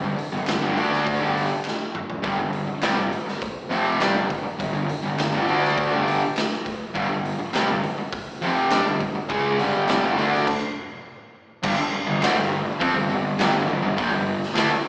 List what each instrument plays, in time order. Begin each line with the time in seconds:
0.02 picked electric bass G1, distorted electric guitar G2 D3
0.16 muted distorted electric guitar stroke, muted picked electric bass stroke, open hi-hat
0.32 picked electric bass G1, distorted electric guitar G2 D3
0.47 picked electric bass G1, distorted electric guitar G2 D3, snare, clap, open hi-hat
0.61 picked electric bass G1, distorted electric guitar G2 D3
0.76 picked electric bass D2, distorted electric guitar D3 A3 D4, open hi-hat
0.93 snare
1.07 kick, open hi-hat
1.19 picked electric bass G1, distorted electric guitar G2 D3 G3
1.37 open hi-hat
1.65 snare, clap
1.95 mid tom
2.10 floor tom
2.23 picked electric bass G1, distorted electric guitar G2 D3, kick, open hi-hat
2.38 picked electric bass G1, distorted electric guitar G2 D3
2.53 open hi-hat
2.67 muted distorted electric guitar stroke, muted picked electric bass stroke
2.82 picked electric bass C2, distorted electric guitar C3 G3, snare, clap, open hi-hat
2.96 picked electric bass G1, distorted electric guitar G2 D3
3.11 muted distorted electric guitar stroke, muted picked electric bass stroke, open hi-hat
3.26 muted distorted electric guitar stroke, muted picked electric bass stroke, snare
3.42 kick, open hi-hat
3.70 picked electric bass F1, distorted electric guitar F2 C3 F3, open hi-hat
3.99 picked electric bass G2, distorted electric guitar G3 D4, snare, clap, open hi-hat
4.14 picked electric bass G1, distorted electric guitar G2 D3
4.28 muted distorted electric guitar stroke, muted picked electric bass stroke, kick, open hi-hat
4.43 muted distorted electric guitar stroke, muted picked electric bass stroke
4.59 picked electric bass G1, distorted electric guitar G2 D3, kick, open hi-hat
4.73 picked electric bass G1, distorted electric guitar G2 D3
4.88 muted distorted electric guitar stroke, muted picked electric bass stroke, open hi-hat
5.03 picked electric bass G1, distorted electric guitar G2 D3
5.18 picked electric bass G1, distorted electric guitar G2 D3, snare, clap, open hi-hat
5.32 picked electric bass G1, distorted electric guitar G2 D3
5.46 picked electric bass D2, distorted electric guitar D3 A3 D4, open hi-hat
5.64 snare
5.77 kick, open hi-hat
5.91 picked electric bass G1, distorted electric guitar G2 D3 G3
6.08 open hi-hat
6.37 snare, clap, open hi-hat
6.53 snare
6.66 kick, open hi-hat
6.94 picked electric bass G1, distorted electric guitar G2 D3, kick, open hi-hat
7.08 picked electric bass G1, distorted electric guitar G2 D3
7.25 open hi-hat
7.39 muted distorted electric guitar stroke, muted picked electric bass stroke
7.53 picked electric bass C2, distorted electric guitar C3 G3, snare, clap, open hi-hat
7.68 picked electric bass G1, distorted electric guitar G2 D3
7.83 muted distorted electric guitar stroke, muted picked electric bass stroke, open hi-hat
7.98 muted distorted electric guitar stroke, muted picked electric bass stroke
8.12 kick, open hi-hat
8.41 picked electric bass F1, distorted electric guitar F2 C3 F3, open hi-hat
8.70 picked electric bass G2, distorted electric guitar G3 D4, snare, clap, open hi-hat
8.85 picked electric bass G1, distorted electric guitar G2 D3
9.00 muted picked electric bass stroke, muted distorted electric guitar stroke, kick, open hi-hat
9.15 muted distorted electric guitar stroke, muted picked electric bass stroke
9.29 picked electric bass C#2, distorted electric guitar C#3 G#3 C#4, kick, open hi-hat
9.57 picked electric bass G1, distorted electric guitar G2 D3 G3, open hi-hat
9.87 picked electric bass C2, distorted electric guitar C3 G3, snare, clap, open hi-hat
10.01 picked electric bass G1, distorted electric guitar G2 D3
10.16 picked electric bass D2, distorted electric guitar D3 A3 D4, open hi-hat
10.34 snare
10.47 kick, crash
11.63 picked electric bass G1, distorted electric guitar G2 D3, kick, crash
11.77 muted distorted electric guitar stroke, muted picked electric bass stroke
11.93 muted distorted electric guitar stroke, muted picked electric bass stroke
12.07 picked electric bass G1, distorted electric guitar G2 D3
12.21 picked electric bass D2, distorted electric guitar D3 A3, snare, clap, open hi-hat
12.35 picked electric bass G1, distorted electric guitar G2 D3
12.79 picked electric bass F2, distorted electric guitar F3 C4, kick, open hi-hat
12.95 picked electric bass G1, distorted electric guitar G2 D3
13.10 picked electric bass G1, distorted electric guitar G2 D3
13.38 picked electric bass G1, distorted electric guitar G2 D3, snare, clap, open hi-hat
13.53 picked electric bass G1, distorted electric guitar G2 D3
13.68 picked electric bass G1, distorted electric guitar G2 D3
13.83 picked electric bass G1, distorted electric guitar G2 D3
13.97 picked electric bass A#1, distorted electric guitar A#2 F3, kick, open hi-hat
14.11 picked electric bass G1, distorted electric guitar G2 D3
14.43 snare
14.54 picked electric bass D2, distorted electric guitar D3 A3, clap, open hi-hat
14.58 snare
14.70 muted picked electric bass stroke, muted distorted electric guitar stroke